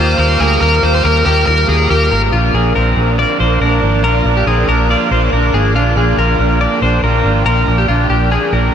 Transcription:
Already playing: fingered electric bass D#2, trumpet A#3, overdriven electric guitar F4, clean electric guitar F4, string machine A#4 F5 G5 D#6, lead electric guitar C5
0.00 overdriven electric guitar G3 A#3
0.18 fingered electric bass D#2, overdriven electric guitar D#3 G3 A#3 F4, clean electric guitar A#4, lead electric guitar C5
0.40 fingered electric bass D2, overdriven electric guitar G3 A#3 F4, clean electric guitar G#4, lead electric guitar A#4
0.61 fingered electric bass D#2, overdriven electric guitar D#3 G3 A#3 F4, lead electric guitar A#4, clean electric guitar A#4
0.83 fingered electric bass D#2, overdriven electric guitar G3 A#3 F4, lead electric guitar C5
0.95 clean electric guitar C5
1.04 fingered electric bass D#2, overdriven electric guitar D#3 G3 A#3 F4, lead electric guitar A#4, clean electric guitar A#4
1.26 fingered electric bass D#2, overdriven electric guitar G3 A#3 F4, clean electric guitar G4, lead electric guitar A#4
1.46 fingered electric bass D#2, overdriven electric guitar D#3 G3 A#3 F4, lead electric guitar A#4, clean electric guitar A#4
1.68 fingered electric bass D#2, overdriven electric guitar G3 A#3 F4, lead electric guitar G#4, clean electric guitar A#4
1.89 fingered electric bass D#2, overdriven electric guitar D#3 G3 A#3 F4, clean electric guitar G4, lead electric guitar A#4
2.10 fingered electric bass G#1, overdriven electric guitar G3 A#3 F4, clean electric guitar A#4
2.32 fingered electric bass A#1, overdriven electric guitar A#2 D3 F3 A#3 D4, trumpet A#3, clean electric guitar F4, string machine A#4 D5 F5 D6
2.54 fingered electric bass A#1, overdriven electric guitar F3 A#3 D4, clean electric guitar G#4
2.75 fingered electric bass A#1, overdriven electric guitar D3 F3 A#3 D4, trumpet C4, clean electric guitar A#4
2.97 fingered electric bass A#1, overdriven electric guitar F3 A#3 D4
3.12 trumpet C4
3.18 overdriven electric guitar A#2 D3 F3 A#3 D4, trumpet A#3, clean electric guitar D5
3.39 fingered electric bass A#1, overdriven electric guitar F3 A#3 D4, clean electric guitar C5
3.60 fingered electric bass A#1, overdriven electric guitar D3 F3 A#3 D4, trumpet D4, clean electric guitar A#4
3.82 fingered electric bass G#1, overdriven electric guitar F3 A#3 D4
4.03 fingered electric bass A#1, overdriven electric guitar A#2 D3 F3 A#3 D4, trumpet F4, clean electric guitar A#4
4.25 fingered electric bass A#1, overdriven electric guitar F3 A#3 D4, trumpet D4
4.37 clean electric guitar G4
4.47 fingered electric bass A#1, overdriven electric guitar D3 F3 A#3 D4, trumpet C4, clean electric guitar G#4
4.68 fingered electric bass A#1, overdriven electric guitar F3 A#3 D4, trumpet D4, clean electric guitar A#4
4.89 overdriven electric guitar A#2 D3 F3 A#3 D4, trumpet F4, clean electric guitar D5
5.11 fingered electric bass A#1, overdriven electric guitar F3 A#3 D4, trumpet F4, clean electric guitar C5
5.25 trumpet C#4
5.32 fingered electric bass A#1, overdriven electric guitar D3 F3 A#3 D4, trumpet D4, clean electric guitar A#4
5.53 fingered electric bass G#1, overdriven electric guitar F3 A#3 D4, clean electric guitar G#4
5.75 fingered electric bass A#1, overdriven electric guitar A#2 D3 F3 A#3 D4, trumpet D4, clean electric guitar F4, string machine G5
5.95 fingered electric bass A#1, overdriven electric guitar F3 A#3 D4, trumpet F4, clean electric guitar G#4
6.17 fingered electric bass A#1, overdriven electric guitar D3 F3 A#3 D4, trumpet F4, clean electric guitar A#4
6.39 fingered electric bass A#1, overdriven electric guitar F3 A#3 D4
6.60 overdriven electric guitar A#2 D3 F3 A#3 D4, trumpet D4, clean electric guitar D5
6.81 fingered electric bass A#1, overdriven electric guitar F3 A#3 D4, trumpet D4, clean electric guitar C5
7.02 fingered electric bass A#1, overdriven electric guitar D3 F3 A#3 D4, trumpet F4, clean electric guitar A#4
7.23 fingered electric bass G#1, overdriven electric guitar F3 A#3 D4
7.44 fingered electric bass A#1, overdriven electric guitar A#2 D3 F3 A#3 D4, trumpet F4, clean electric guitar A#4
7.66 fingered electric bass A#1, overdriven electric guitar F3 A#3 D4, trumpet D4
7.78 clean electric guitar G4
7.87 fingered electric bass A#1, overdriven electric guitar D3 F3 A#3 D4, trumpet D4, clean electric guitar F4
8.09 fingered electric bass A#1, overdriven electric guitar F3 A#3 D4, clean electric guitar G4
8.30 overdriven electric guitar A#2 D3 F3 A#3 D4, clean electric guitar G#4
8.51 fingered electric bass A#1, overdriven electric guitar F3 A#3 D4, clean electric guitar A#4

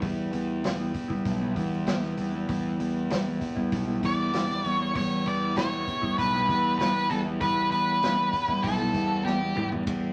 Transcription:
Already playing: transistor combo organ B3 E4 G4
0.01 picked electric bass E2, clean electric guitar E3 G3 B3 E4, kick, open hi-hat
0.33 picked electric bass E2, open hi-hat
0.63 clean electric guitar E3 G3 B3 E4, snare, open hi-hat
0.78 clean electric guitar G3 B3 E4
0.94 muted clean electric guitar stroke, kick, open hi-hat
1.08 clean electric guitar G3 B3 E4, kick
1.25 picked electric bass B1, kick, open hi-hat
1.40 clean electric guitar G3 B3 E4
1.55 picked electric bass E2, clean electric guitar E3 G3 B3 E4, kick, open hi-hat
1.85 clean electric guitar E3 G3 B3 E4, snare, open hi-hat
2.01 clean electric guitar G3 B3 E4, snare
2.17 picked electric bass E2, clean electric guitar E3 G3 B3 E4, open hi-hat
2.32 clean electric guitar G3 B3 E4
2.46 picked electric bass E2, clean electric guitar E3 G3 B3 E4, kick, open hi-hat
2.80 picked electric bass E2, open hi-hat
3.10 clean electric guitar E3 G3 B3 E4, snare, open hi-hat
3.25 clean electric guitar G3 B3 E4
3.41 muted clean electric guitar stroke, kick, open hi-hat
3.55 clean electric guitar G3 B3 E4, kick
3.72 picked electric bass B1, kick, open hi-hat
3.86 clean electric guitar G3 B3 E4
4.01 picked electric bass E2, clean electric guitar E3 G3 B3 E4, kick, open hi-hat
4.05 lead electric guitar D5
4.32 clean electric guitar E3 G3 B3 E4, snare, open hi-hat
4.48 clean electric guitar G3 B3 E4, snare
4.63 picked electric bass E2, clean electric guitar E3 G3 B3 E4, open hi-hat
4.68 lead electric guitar C#5
4.78 clean electric guitar G3 B3 E4
4.93 picked electric bass E2, clean electric guitar E3 G3 B3 E4, lead electric guitar C#5, kick, open hi-hat
5.26 picked electric bass E2, lead electric guitar D5, open hi-hat
5.55 clean electric guitar E3 G3 B3 E4, lead electric guitar C#5, snare, open hi-hat
5.70 clean electric guitar G3 B3 E4
5.86 muted clean electric guitar stroke, kick, open hi-hat
6.01 clean electric guitar G3 B3 E4, kick
6.18 picked electric bass B1, lead electric guitar B4, kick, open hi-hat
6.33 clean electric guitar G3 B3 E4
6.48 picked electric bass E2, clean electric guitar E3 G3 B3 E4, kick, open hi-hat
6.79 clean electric guitar E3 G3 B3 E4, lead electric guitar B4, snare, open hi-hat
6.94 clean electric guitar G3 E4
7.10 picked electric bass E2, clean electric guitar E3 G3 B3 E4, lead electric guitar A4, open hi-hat
7.26 clean electric guitar G3 B3 E4
7.41 picked electric bass E2, clean electric guitar E3 G3 B3 E4, lead electric guitar B4, kick, open hi-hat
7.71 picked electric bass E2, lead electric guitar B4, open hi-hat
8.02 clean electric guitar E3 G3 B3 E4, snare, open hi-hat
8.17 clean electric guitar B3 E4
8.33 muted clean electric guitar stroke, kick, open hi-hat
8.48 clean electric guitar G3 B3 E4, kick
8.63 picked electric bass B1, lead electric guitar A4, kick, open hi-hat
8.79 clean electric guitar G3 B3 E4
8.93 picked electric bass E2, clean electric guitar E3 G3 B3 E4, kick, open hi-hat
9.25 clean electric guitar E3 G3 B3 E4, lead electric guitar G4, snare
9.41 clean electric guitar G3 B3 E4
9.56 picked electric bass E2, clean electric guitar E3 G3 B3 E4, mid tom
9.71 clean electric guitar G3 B3 E4, floor tom
9.85 picked electric bass E2, clean electric guitar E3 G3 B3 E4, transistor combo organ B3 E4 G4, kick, ride

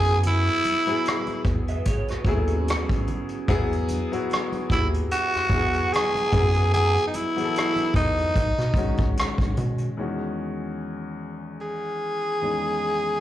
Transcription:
Already playing: analog synth bass F#2, grand piano F#3 B3 E4 G#4, tenor saxophone G#4
0.04 closed hi-hat
0.23 closed hi-hat, low conga
0.27 tenor saxophone E4
0.47 closed hi-hat
0.64 closed hi-hat, muted conga, high conga
0.87 grand piano F#3 B3 E4 G#4, closed hi-hat
1.05 cross-stick, closed hi-hat
1.26 closed hi-hat, high conga
1.45 analog synth bass E2, kick, closed hi-hat, low conga
1.68 clean electric guitar B4 E5, closed hi-hat
1.85 clean electric guitar G#4 C#5, kick, closed hi-hat
2.08 analog synth bass D#2, clean electric guitar F#4 B4, cross-stick, closed hi-hat
2.25 analog synth bass D#2, grand piano F#3 B3 E4 G#4, clean electric guitar E4 A4, kick, closed hi-hat, muted conga, high conga
2.47 clean electric guitar C#4 F#4, closed hi-hat
2.67 cross-stick, closed hi-hat, muted conga
2.89 kick, closed hi-hat, high conga
3.07 closed hi-hat, high conga, low conga
3.29 closed hi-hat
3.48 analog synth bass E2, grand piano F#3 B3 E4 G#4, kick, closed hi-hat, low conga
3.72 closed hi-hat
3.88 closed hi-hat, muted conga, high conga
4.12 grand piano F#3 B3 E4 F#4, closed hi-hat
4.30 cross-stick, closed hi-hat, muted conga
4.52 closed hi-hat, high conga
4.70 analog synth bass D#2, grand piano F#3 B3 E4 G4, tenor saxophone E4, kick, closed hi-hat, muted conga, low conga
4.79 grand piano G#4
4.94 closed hi-hat
5.11 tenor saxophone F#4, closed hi-hat, muted conga
5.34 analog synth bass E2, cross-stick, closed hi-hat
5.50 analog synth bass E2, grand piano F#3 B3 E4 G#4, kick, closed hi-hat, muted conga, high conga
5.73 closed hi-hat
5.93 tenor saxophone G#4, cross-stick, closed hi-hat
6.15 closed hi-hat, high conga
6.32 analog synth bass F#2, grand piano F#3 B3 E4 G#4, kick, closed hi-hat, high conga, low conga
6.54 closed hi-hat
6.74 tenor saxophone G#4, closed hi-hat, muted conga, low conga
6.97 closed hi-hat
7.07 tenor saxophone D#4
7.14 tenor saxophone E4, closed hi-hat, muted conga, high conga
7.36 grand piano E3 F#3 B3 G#4, closed hi-hat
7.44 grand piano A4
7.56 cross-stick, closed hi-hat
7.76 closed hi-hat, high conga
7.94 analog synth bass E2, tenor saxophone D#4, kick, closed hi-hat, muted conga, low conga
8.18 closed hi-hat, high conga
8.36 analog synth bass B1, kick, closed hi-hat, muted conga
8.58 analog synth bass B2, cross-stick, closed hi-hat
8.74 analog synth bass B1, grand piano D#3 G#3 C#4, kick, closed hi-hat, muted conga, high conga
8.78 grand piano F#4
8.97 analog synth bass C#2, kick, closed hi-hat
9.16 analog synth bass B1, cross-stick, closed hi-hat, muted conga
9.38 analog synth bass B1, kick, cross-stick, closed hi-hat, high conga
9.57 analog synth bass B2, closed hi-hat, muted conga, high conga, low conga
9.78 closed hi-hat
9.97 grand piano E2 D#3 G#3 C#4 F#4
11.61 tenor saxophone G#4
12.42 grand piano E2 D#3 G#3 C#4 D#4

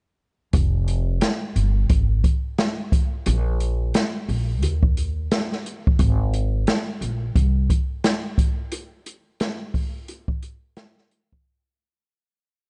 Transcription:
0.53 upright bass F1, kick, closed hi-hat
0.88 closed hi-hat
1.21 snare, closed hi-hat
1.56 upright bass G1, closed hi-hat
1.90 upright bass G#1, kick, closed hi-hat
2.24 kick, closed hi-hat
2.58 snare, closed hi-hat
2.92 kick, closed hi-hat
3.26 upright bass A#1, closed hi-hat
3.60 closed hi-hat
3.94 snare, closed hi-hat
4.29 upright bass A#1, open hi-hat
4.63 upright bass D#2, closed hi-hat
4.83 kick
4.97 closed hi-hat
5.31 snare, closed hi-hat
5.52 snare
5.66 closed hi-hat
5.87 kick
5.99 upright bass G#1, kick, closed hi-hat
6.34 closed hi-hat
6.67 snare, closed hi-hat
7.01 upright bass A#1, closed hi-hat
7.35 upright bass C2, kick, closed hi-hat
7.70 kick, closed hi-hat
8.04 snare, closed hi-hat
8.38 kick, closed hi-hat
8.72 closed hi-hat
9.06 closed hi-hat
9.40 snare, closed hi-hat
9.74 kick, open hi-hat
10.08 closed hi-hat
10.28 kick
10.43 closed hi-hat
10.77 snare, closed hi-hat
10.98 snare
11.11 closed hi-hat
11.32 kick

